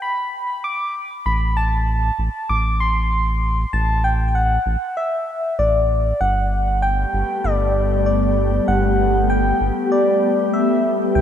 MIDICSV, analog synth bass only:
0, 0, Header, 1, 2, 480
1, 0, Start_track
1, 0, Key_signature, 1, "major"
1, 0, Tempo, 618557
1, 975, Time_signature, 4, 2, 24, 8
1, 8702, End_track
2, 0, Start_track
2, 0, Title_t, "Analog synth bass"
2, 0, Program_c, 0, 38
2, 976, Note_on_c, 0, 33, 101
2, 1633, Note_off_c, 0, 33, 0
2, 1696, Note_on_c, 0, 33, 79
2, 1777, Note_off_c, 0, 33, 0
2, 1936, Note_on_c, 0, 33, 84
2, 2833, Note_off_c, 0, 33, 0
2, 2896, Note_on_c, 0, 33, 102
2, 3553, Note_off_c, 0, 33, 0
2, 3616, Note_on_c, 0, 33, 81
2, 3697, Note_off_c, 0, 33, 0
2, 4336, Note_on_c, 0, 33, 81
2, 4753, Note_off_c, 0, 33, 0
2, 4816, Note_on_c, 0, 31, 101
2, 5473, Note_off_c, 0, 31, 0
2, 5536, Note_on_c, 0, 31, 83
2, 5617, Note_off_c, 0, 31, 0
2, 5776, Note_on_c, 0, 31, 85
2, 6673, Note_off_c, 0, 31, 0
2, 6735, Note_on_c, 0, 31, 101
2, 7393, Note_off_c, 0, 31, 0
2, 7455, Note_on_c, 0, 31, 79
2, 7537, Note_off_c, 0, 31, 0
2, 8655, Note_on_c, 0, 36, 101
2, 8702, Note_off_c, 0, 36, 0
2, 8702, End_track
0, 0, End_of_file